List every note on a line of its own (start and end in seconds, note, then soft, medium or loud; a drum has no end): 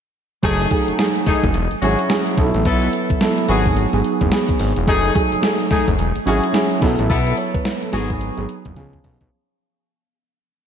0.43 0.67 F#1 loud
0.43 0.65 F#3 medium
0.43 0.69 A3 medium
0.43 0.66 A3 medium
0.43 0.69 D#4 medium
0.43 0.66 D#4 medium
0.43 0.69 G#4 loud
0.43 0.66 G#4 loud
0.43 kick loud
0.43 closed hi-hat medium
0.60 closed hi-hat medium
0.71 0.93 F#3 loud
0.71 0.93 A3 medium
0.71 0.94 D#4 medium
0.71 0.94 G#4 loud
0.71 kick medium
0.71 closed hi-hat medium
0.88 0.93 F#1 soft
0.88 closed hi-hat medium
0.98 1.54 F#3 medium
0.98 1.54 A3 medium
0.98 1.54 D#4 medium
0.98 1.55 G#4 medium
0.98 snare loud
0.98 closed hi-hat medium
1.16 closed hi-hat medium
1.26 1.34 F#1 medium
1.26 1.44 A3 medium
1.26 1.44 D#4 medium
1.26 1.44 G#4 medium
1.26 kick medium
1.26 snare medium
1.26 closed hi-hat medium
1.44 1.53 F#1 medium
1.44 kick medium
1.44 closed hi-hat soft
1.54 1.69 E1 loud
1.54 closed hi-hat medium
1.71 1.76 G#1 medium
1.71 closed hi-hat soft
1.82 1.96 G#1 medium
1.82 2.04 F#3 medium
1.82 1.99 C#4 medium
1.82 2.04 C#4 medium
1.82 2.05 E4 medium
1.82 1.99 F#4 medium
1.82 1.99 G#4 medium
1.82 2.05 G#4 medium
1.82 closed hi-hat medium
1.99 closed hi-hat medium
2.09 2.35 F#3 medium
2.09 2.38 C#4 medium
2.09 2.38 E4 medium
2.09 2.38 G#4 loud
2.09 snare loud
2.09 closed hi-hat medium
2.27 closed hi-hat soft
2.37 2.52 B1 medium
2.37 3.06 F#3 medium
2.37 3.07 B3 medium
2.37 2.46 D#4 medium
2.37 3.07 A4 loud
2.37 kick medium
2.37 closed hi-hat medium
2.44 3.10 E4 medium
2.54 2.64 A1 medium
2.54 closed hi-hat medium
2.65 2.89 B1 loud
2.65 2.91 B3 medium
2.65 2.91 E4 medium
2.65 2.92 A4 loud
2.65 kick loud
2.65 closed hi-hat medium
2.82 closed hi-hat medium
2.93 closed hi-hat medium
3.10 3.15 G#1 medium
3.10 kick medium
3.10 closed hi-hat medium
3.21 3.43 F#3 medium
3.21 3.43 B3 medium
3.21 3.44 E4 medium
3.21 3.44 A4 loud
3.21 snare loud
3.21 closed hi-hat medium
3.38 closed hi-hat medium
3.48 3.87 G#1 loud
3.48 3.83 F#3 medium
3.48 3.83 B3 medium
3.48 3.66 B3 medium
3.48 3.83 D#4 medium
3.48 3.66 F#4 medium
3.48 3.84 G#4 medium
3.48 3.66 G#4 medium
3.48 closed hi-hat medium
3.66 kick medium
3.66 closed hi-hat soft
3.77 closed hi-hat medium
3.92 4.03 G#1 loud
3.92 4.24 F#3 medium
3.92 4.24 B3 medium
3.92 4.24 D#4 medium
3.92 4.24 G#4 loud
3.92 closed hi-hat soft
4.04 closed hi-hat medium
4.21 4.31 F#1 medium
4.21 kick medium
4.21 closed hi-hat medium
4.31 4.76 F#3 medium
4.31 4.77 B3 medium
4.31 4.77 D#4 medium
4.31 4.77 G#4 medium
4.31 snare loud
4.31 closed hi-hat medium
4.49 kick medium
4.49 closed hi-hat soft
4.59 4.74 G#1 medium
4.59 open hi-hat medium
4.76 4.86 E1 medium
4.76 closed hi-hat medium
4.86 5.11 F#1 loud
4.86 5.09 F#3 loud
4.86 5.10 A3 medium
4.86 5.14 A3 medium
4.86 5.10 D#4 medium
4.86 5.14 D#4 medium
4.86 5.10 G#4 loud
4.86 5.14 G#4 loud
4.86 kick loud
4.86 closed hi-hat medium
5.05 closed hi-hat medium
5.14 5.37 F#3 loud
5.14 5.37 A3 loud
5.14 5.38 D#4 medium
5.14 5.38 G#4 loud
5.14 kick medium
5.14 closed hi-hat medium
5.32 5.37 F#1 medium
5.32 closed hi-hat medium
5.42 5.98 F#3 medium
5.42 5.98 A3 medium
5.42 5.99 D#4 medium
5.42 5.99 G#4 medium
5.42 snare loud
5.42 closed hi-hat medium
5.60 closed hi-hat medium
5.71 5.78 F#1 soft
5.71 5.88 A3 medium
5.71 5.88 D#4 medium
5.71 5.88 G#4 medium
5.71 kick medium
5.71 snare medium
5.71 closed hi-hat medium
5.88 5.97 F#1 medium
5.88 kick medium
5.88 closed hi-hat soft
5.99 6.13 E1 loud
5.99 closed hi-hat medium
6.16 6.20 G#1 soft
6.16 closed hi-hat soft
6.26 6.41 G#1 medium
6.26 6.48 F#3 medium
6.26 6.49 C#4 medium
6.26 6.43 C#4 medium
6.26 6.49 E4 medium
6.26 6.44 F#4 medium
6.26 6.44 G#4 medium
6.26 6.49 G#4 medium
6.26 closed hi-hat medium
6.44 closed hi-hat medium
6.53 6.80 F#3 medium
6.53 6.82 C#4 medium
6.53 6.80 E4 medium
6.53 6.82 G#4 loud
6.53 snare loud
6.53 closed hi-hat medium
6.71 closed hi-hat soft
6.81 6.96 B1 loud
6.81 7.51 F#3 medium
6.81 7.51 B3 medium
6.81 7.51 E4 medium
6.81 7.38 A4 loud
6.81 kick medium
6.81 open hi-hat medium
6.99 7.08 A1 medium
6.99 closed hi-hat medium
7.09 7.33 B1 loud
7.09 7.36 B3 medium
7.09 7.36 E4 medium
7.09 7.36 A4 loud
7.09 kick loud
7.09 closed hi-hat medium
7.27 closed hi-hat medium
7.37 7.54 C#5 medium
7.37 closed hi-hat medium
7.54 7.59 G#1 soft
7.54 7.81 B4 medium
7.54 kick medium
7.54 closed hi-hat medium
7.65 snare loud
7.65 closed hi-hat medium
7.82 8.09 A4 medium
7.82 closed hi-hat medium
7.92 8.31 G#1 loud
7.92 8.27 F#3 medium
7.92 8.27 B3 medium
7.92 8.10 B3 medium
7.92 8.28 D#4 medium
7.92 8.10 F#4 medium
7.92 8.28 G#4 loud
7.92 8.10 G#4 medium
7.92 snare medium
7.92 open hi-hat medium
8.10 kick medium
8.10 closed hi-hat soft
8.21 closed hi-hat medium
8.37 8.47 G#1 medium
8.37 8.68 F#3 medium
8.37 8.68 B3 medium
8.37 8.68 D#4 medium
8.37 8.69 G#4 medium
8.37 closed hi-hat soft
8.49 closed hi-hat medium
8.65 8.75 F#1 medium
8.65 kick medium
8.65 closed hi-hat medium
8.76 9.00 C#2 loud
8.76 9.21 F3 medium
8.76 9.21 B3 medium
8.76 9.21 C#4 medium
8.76 9.21 G#4 medium
8.76 kick medium
8.76 closed hi-hat medium
8.93 kick medium
8.93 closed hi-hat soft
9.04 9.19 B1 medium
9.04 kick medium
9.04 open hi-hat medium
9.21 9.30 B1 loud
9.21 kick medium
9.21 closed hi-hat medium